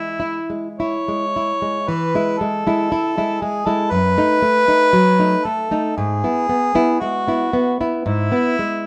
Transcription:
Already playing: nylon-string guitar G#3, harmonica E4
0.20 nylon-string guitar E4
0.50 nylon-string guitar G#3
0.78 nylon-string guitar E4, harmonica C#5
1.08 nylon-string guitar G#3
1.36 nylon-string guitar E4
1.62 nylon-string guitar G#3
1.88 nylon-string guitar E3, harmonica B4
2.15 nylon-string guitar G#3 E4
2.38 nylon-string guitar G#3, harmonica A4
2.67 nylon-string guitar G#3 E4
2.92 nylon-string guitar E4
3.18 nylon-string guitar G#3 E4
3.41 nylon-string guitar G#3, harmonica G#4
3.66 nylon-string guitar G#3 E4, harmonica A4
3.90 nylon-string guitar F#2, harmonica B4
4.18 nylon-string guitar A3 D#4
4.42 nylon-string guitar A3
4.68 nylon-string guitar A3 D#4
4.93 nylon-string guitar F#3
5.19 nylon-string guitar A3 D#4
5.44 nylon-string guitar A3, harmonica A4
5.71 nylon-string guitar A3 D#4
5.97 nylon-string guitar G#2, harmonica G#4
6.24 nylon-string guitar B3 E4
6.49 nylon-string guitar B3
6.75 nylon-string guitar B3 E4
7.00 nylon-string guitar G#3, harmonica F#4
7.28 nylon-string guitar B3 E4
7.53 nylon-string guitar B3
7.81 nylon-string guitar B3 E4
8.04 nylon-string guitar G#2, harmonica E4
8.32 nylon-string guitar B3 E4
8.59 nylon-string guitar G#3

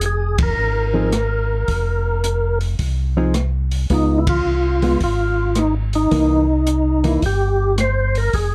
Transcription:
Already playing: tonewheel organ F1
0.01 closed hi-hat
0.06 tonewheel organ G#4
0.38 kick, ride
0.43 tonewheel organ A#4
0.57 tonewheel organ G#1
0.94 hollow-body jazz guitar F3 C4 D#4 G#4
1.12 cross-stick, closed hi-hat
1.68 tonewheel organ F1, kick, open hi-hat
2.24 closed hi-hat
2.61 open hi-hat
2.79 tonewheel organ C2, kick, open hi-hat
3.17 hollow-body jazz guitar F3 C4 D#4 G#4
3.34 cross-stick, closed hi-hat
3.71 open hi-hat
3.90 tonewheel organ C#2 D#4, hollow-body jazz guitar G#3 B3 F4, kick, open hi-hat
4.18 tonewheel organ E4
4.27 tonewheel organ F4, kick, ride
4.45 tonewheel organ C2
4.82 hollow-body jazz guitar G#3 B3 F4, open hi-hat
5.00 tonewheel organ G#1 F4, kick, open hi-hat
5.55 tonewheel organ D#4, cross-stick, closed hi-hat
5.93 tonewheel organ D#4, open hi-hat
6.11 tonewheel organ C2, hollow-body jazz guitar E3 A#3 D#4, kick, open hi-hat
6.67 closed hi-hat
7.04 hollow-body jazz guitar E3 A#3 D#4, tonewheel organ E4, open hi-hat
7.22 tonewheel organ G1 G4, kick, open hi-hat
7.78 tonewheel organ C5, cross-stick, closed hi-hat
8.15 tonewheel organ A#4, open hi-hat
8.33 tonewheel organ F1 G#4, kick, open hi-hat

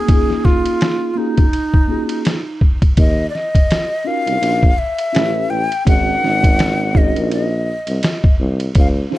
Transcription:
Already playing: flute G#4
0.07 tine electric piano A#3 C#4 D#4 F4 G#4, kick, ride
0.30 snare
0.45 flute F4, kick, snare
0.66 ride
0.81 snare, hi-hat pedal, ride
1.14 tine electric piano A#3 C#4 F4, flute D#4 F4
1.18 tine electric piano F#4 G#4
1.38 kick, ride
1.53 ride
1.74 kick
1.88 tine electric piano A#3 C#4 F4 F#4 G#4
2.09 ride
2.25 snare, hi-hat pedal, ride
2.61 kick
2.82 kick, ride
2.97 tuba D#2, flute D#5, kick, ride
3.30 flute D5
3.35 flute D#5, snare
3.55 kick, ride
3.71 snare, hi-hat pedal, ride
4.04 tine electric piano C#4 D#4 F4 F#4 A#4, flute F5
4.27 tuba C2, ride
4.42 tuba A#1, ride
4.63 kick
4.78 flute E5
4.99 ride
5.12 tuba A1, tine electric piano C#4 E4 G4 A4 B4, snare, hi-hat pedal, ride
5.50 tuba A1, flute G5
5.72 ride
5.85 tuba G#1, tine electric piano C#4 D#4 F#4 G#4 A#4, flute F#5, kick, ride
6.23 tuba G#1, snare
6.44 kick, ride
6.59 snare, hi-hat pedal, ride
6.93 tine electric piano C#4 D#4 F#4 G#4 A#4, flute D#5, kick
7.16 tuba A#1, ride
7.32 flute D#5, ride
7.87 tuba C2, ride
8.03 snare, hi-hat pedal, ride
8.24 kick
8.40 tuba C2
8.60 ride
8.75 tuba C#2, kick, ride
8.80 flute F5
9.10 tine electric piano C#4 D#4 F4 G#4 C5, snare

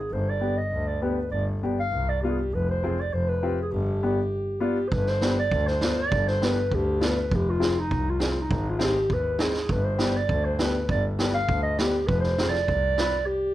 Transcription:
Already playing: clarinet G#4
0.11 double bass G1, clarinet C5
0.30 clarinet D5
0.40 upright piano B3 D4 G4
0.57 clarinet D#5
0.71 double bass D2
0.87 clarinet D5
1.02 upright piano B3 D4 G4, clarinet B4
1.31 double bass G1, clarinet D5
1.63 upright piano B3 D4 G4
1.80 clarinet F5
1.92 double bass C2
2.09 clarinet D5
2.22 upright piano B3 D4 F4, clarinet G4
2.30 clarinet G#4
2.38 clarinet G4
2.52 double bass F1, clarinet B4
2.70 clarinet C5
2.84 upright piano C4 F4 G#4
3.00 clarinet D5
3.12 double bass F1, clarinet C5
3.29 clarinet B4
3.43 upright piano C4 F4 G4
3.61 clarinet G#4
3.72 double bass G1, clarinet G4
4.03 upright piano B3 D4 G4
4.60 upright piano B3 D4 F4, clarinet G4
4.88 double bass G1, clarinet C5, kick
4.92 clarinet B4
5.06 clarinet C5, snare
5.21 upright piano B3 D4 G4, snare
5.39 clarinet D5
5.51 double bass D2, kick
5.67 clarinet C5, snare
5.81 upright piano B3 D4 F4, snare
5.98 clarinet D5
6.11 double bass G1, kick
6.27 clarinet C5, snare
6.42 upright piano B3 D4 G4, clarinet B4, snare
6.72 double bass D2, clarinet G4, kick
7.00 upright piano B3 D4 F4, snare
7.06 clarinet B4
7.32 double bass F1, clarinet G4, kick
7.50 clarinet F4
7.60 upright piano C4 F4 G#4, snare
7.79 clarinet D#4
7.91 double bass C2, kick
8.10 clarinet F4
8.20 upright piano C4 F4 G#4, snare
8.42 clarinet D#4
8.50 double bass G#1, kick
8.70 clarinet F4
8.79 upright piano C4 D#4 G#4, snare
8.84 clarinet G4
9.10 double bass D#2, clarinet B4, kick
9.39 upright piano C4 D#4 G#4, clarinet G#4, snare
9.53 snare
9.69 double bass G1, clarinet B4, kick
9.84 clarinet C5
9.98 upright piano B3 D4 G4, snare
10.16 clarinet D5
10.29 double bass D2, kick
10.44 clarinet C5
10.59 upright piano B3 D4 G4, clarinet B4, snare
10.89 double bass G1, clarinet D5, kick
11.19 upright piano B3 D4 G4, snare
11.34 clarinet F5
11.48 double bass D2, kick
11.63 clarinet D#5
11.78 upright piano B3 D4 G4, clarinet G4, snare
12.07 double bass F1, clarinet B4, kick
12.20 clarinet C5, snare
12.38 upright piano C4 F4 G#4, snare
12.49 clarinet D5
12.53 snare
12.68 double bass C2, kick
12.98 upright piano C4 F4 B4, snare
13.26 clarinet G4

